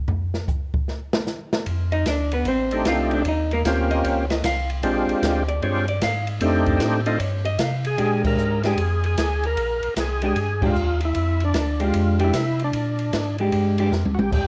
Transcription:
0.08 floor tom
0.34 snare
0.48 kick, hi-hat pedal
0.74 kick
0.88 snare
1.13 snare
1.27 snare, hi-hat pedal
1.53 snare
1.66 F2, kick, ride
1.92 D#4 D#5, ride
2.06 D2 D4 D5, kick, snare, hi-hat pedal, ride
2.32 B3 B4, ride
2.45 A1 C4 C5, kick, ride
2.71 A3 C4 D4 D#4 G4, ride
2.85 C2 F4 F5, kick, snare, hi-hat pedal, ride
3.11 D4 D5, ride
3.25 D#2 D#4 D#5, kick, ride
3.51 A#3 A#4, ride
3.65 D2 A#3 C4 C#4 F4 G4, kick, snare, hi-hat pedal, ride
3.91 D#5, ride
4.04 C#2 C#5, kick, ride
4.30 D#5, snare, ride
4.44 C2 F5, kick, snare, hi-hat pedal, ride
4.70 ride
4.83 A#1 G#3 C4 D4 F4 G4, kick, ride
5.07 A#1, ride
5.22 D2, kick, snare, hi-hat pedal, ride
5.48 D5, ride
5.62 G2 G#3 C4 D4 F4 G4 C#5, kick, ride
5.88 D5, ride
6.01 G#2 F5, kick, snare, hi-hat pedal, ride
6.27 ride
6.41 F2 A3 C4 D4 D#4 G4, kick, ride
6.66 kick, ride
6.80 A2, kick, snare, hi-hat pedal, ride
7.06 A3 C4 D4 D#4 F4 D#5, ride
7.20 G2 C#5, kick, ride
7.45 D#5, ride
7.59 C3 F5, kick, snare, hi-hat pedal, ride
7.85 G#4, ride
7.98 A#2 G#3 D4 G4, kick, ride
8.25 A#4, kick, crash
8.37 G#2, hi-hat pedal
8.64 G#3 D4 G4 G#4, snare, ride
8.78 F2, kick, ride
9.04 G#4, ride
9.17 D2, kick, snare, hi-hat pedal, ride
9.43 A#4, ride
9.57 A#1, kick, ride
9.81 A#1, ride
9.96 C2 G#4, kick, snare, hi-hat pedal, ride
10.22 G#3 D4 G4, ride
10.26 G#4
10.36 G2, kick, ride
10.62 G#3 D4 G4, kick, crash
10.66 F4
10.75 D#2, hi-hat pedal
11.01 ride
11.05 E4
11.15 F2, kick, ride
11.40 ride
11.45 D4
11.54 D2, kick, snare, hi-hat pedal, ride
11.80 G#3 D4 G4, ride
11.84 F4
11.94 F2, kick, ride
12.19 G#3 D4 G4, ride
12.24 E4
12.33 C3, kick, snare, hi-hat pedal, ride
12.59 ride
12.64 D4
12.73 A#2, kick, ride
12.99 ride
13.13 G#2, kick, snare, hi-hat pedal, ride
13.38 G#3 D4 G4, ride
13.52 G2, kick, ride
13.78 G#3 D4 G4, ride
13.92 F2, snare, hi-hat pedal
14.04 D2, high tom
14.14 A#1 F#4
14.19 G4, high tom
14.31 D#2 G4, kick, crash

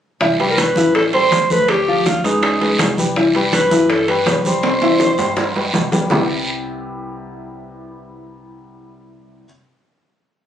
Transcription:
0.20 C2 E3 E4 E5, high bongo, high conga, long guiro
0.39 G3 G4 B4, high conga, high timbale
0.51 A#4
0.58 B4, high bongo, high conga, high timbale, short guiro
0.76 A1 E3 E4 E5, high conga, short guiro
0.95 A4, high bongo, high conga, high timbale, long guiro
1.13 G3 G4 A4 C5, high conga, high timbale
1.31 D2, high bongo, low bongo, high conga, high timbale, short guiro
1.50 A3 A4 B4 C5, high conga, short guiro
1.68 G4, high bongo, high conga, high timbale, long guiro
1.87 F3 F4 F5, high bongo, high conga
2.06 F4, high bongo, high conga, high timbale, short guiro
2.23 C#2 G#3 D#4 G#4 B4, high conga, high timbale, short guiro
2.43 high bongo, high conga, high timbale, long guiro
2.61 G#3 G#4 B4, high bongo, high conga, high timbale
2.79 C2, high bongo, low bongo, high conga, high timbale, low timbale, short guiro
2.97 G3 G4 B4, high bongo, high conga, short guiro
3.16 E3 E4 E5, high bongo, high conga, long guiro
3.34 G3 G4 B4, high conga, high timbale
3.52 B4, high bongo, high conga, high timbale, short guiro
3.71 G2 E3 E4 E5, high conga, short guiro
3.90 A4, high bongo, high conga, high timbale, long guiro
4.08 G3 G4 B4, high conga, high timbale
4.26 C2, high bongo, low bongo, high conga, high timbale, low timbale, short guiro
4.38 B4
4.45 G3 G4 C5, high conga, short guiro
4.63 high bongo, high conga, high timbale, long guiro
4.82 E3 E4 E5, high bongo, high conga, high timbale
5.00 high bongo, high conga, high timbale, short guiro
5.18 G2 G3 G4 C5, high bongo, high conga, low timbale, short guiro
5.36 high bongo, high conga, low timbale, long guiro
5.55 G3 G4 B4, high conga, low timbale
5.74 C2, low bongo, high conga, low timbale, short guiro
5.92 G3 G4 B4, low bongo, high conga, low timbale, short guiro
6.10 C2 C3 G3 B3 C4 E4 G4, low bongo, low conga, low timbale, long guiro

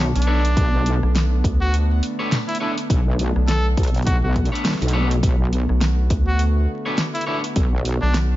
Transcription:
Already playing: B1 D3 A3 B3 D4
0.15 B1 D4, closed hi-hat
0.22 closed hi-hat
0.27 D4 A4 B4 C#5
0.45 closed hi-hat
0.57 B1, kick, closed hi-hat
0.86 closed hi-hat
1.03 B1, cross-stick
1.16 snare, closed hi-hat
1.44 D2, kick, closed hi-hat
1.61 F#4
1.74 closed hi-hat
2.03 closed hi-hat
2.19 D4 A4 B4 C#5
2.32 snare, closed hi-hat
2.48 E4, closed hi-hat
2.55 closed hi-hat
2.60 D4 E4 A4 B4 C#5
2.78 closed hi-hat
2.90 B1, kick, closed hi-hat
3.19 closed hi-hat
3.36 B1, cross-stick
3.48 A4, snare, closed hi-hat
3.77 B1, kick, closed hi-hat
3.83 closed hi-hat
3.87 closed hi-hat
3.94 closed hi-hat
3.97 closed hi-hat
4.02 F#4, closed hi-hat
4.07 kick, closed hi-hat
4.23 B1 F#4
4.36 kick, closed hi-hat
4.45 closed hi-hat
4.52 D4 A4 B4 C#5, closed hi-hat
4.65 snare, closed hi-hat
4.68 snare
4.70 snare
4.73 snare
4.75 snare
4.79 B1, snare, closed hi-hat
4.88 closed hi-hat
4.93 D4 A4 B4 C#5
5.11 closed hi-hat
5.23 B1 F#4, kick, closed hi-hat
5.53 closed hi-hat
5.69 B1, cross-stick
5.81 snare, closed hi-hat
6.10 D2, kick, closed hi-hat
6.27 F#4
6.39 closed hi-hat
6.86 D4 A4 B4 C#5
6.98 snare, closed hi-hat
7.14 E4, closed hi-hat
7.21 closed hi-hat
7.27 D4 E4 A4 B4 C#5, cross-stick
7.44 closed hi-hat
7.56 B1, kick, closed hi-hat
7.85 closed hi-hat
8.02 B1 D4, cross-stick
8.14 snare, closed hi-hat

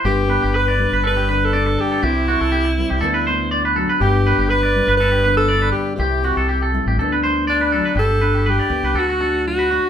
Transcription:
Already playing: G4
0.04 G1 G2 B3 D4 G4
0.28 B3 B4
0.42 G1 G4
0.54 B4
0.68 D5
0.78 G3 D4
0.92 G1 B4
1.04 D4 A4 B4
1.17 G4
1.29 D3 B3 B4
1.45 A4
1.53 D4 D5
1.66 muted clean electric guitar stroke
1.78 G4 A4
1.91 A4
2.03 C2 C3 C4 E4 G4
2.28 C4 F#4
2.41 C2 A4
2.52 G4
2.65 muted clean electric guitar stroke
2.77 G3 C4
2.90 C2 G4
3.01 D2 D3 B3 A4
3.14 B4
3.27 B3 C5
3.51 D5
3.65 B4
3.75 F#3 F#4 A4
3.89 B4
4.00 G1 G2 B3 D4 G4
4.26 B3 B4
4.38 G1 G4
4.49 B4
4.63 D5
4.75 G3 D4
4.87 G1 B4
4.97 A4 B4
5.02 D4
5.12 G4
5.24 D3 B3 B4
5.37 A4
5.48 D5
5.62 B4
5.72 G4
5.96 C2 C3 C4 E4 G4
6.24 F#4, muted nylon-string guitar stroke
6.37 C2 A4
6.49 G4
6.62 A4
6.73 G3 E4
6.86 A1 G4
6.97 D2 D3 B3 D4 A4
7.12 B4
7.23 B3 C5
7.47 D4 D5
7.61 B4
7.72 F#3 D4 A4
7.85 B4
7.95 G1 G2 G4 A4
8.21 D4 B4
8.35 G4
8.46 G3 G4 B4
8.59 D5
8.70 D2 B3
8.83 C2 B4
8.94 D2 D3 A4
8.99 F#4
9.09 F#4
9.20 D4 A4
9.45 F#3 F#4
9.59 B4
9.71 D4 F#4

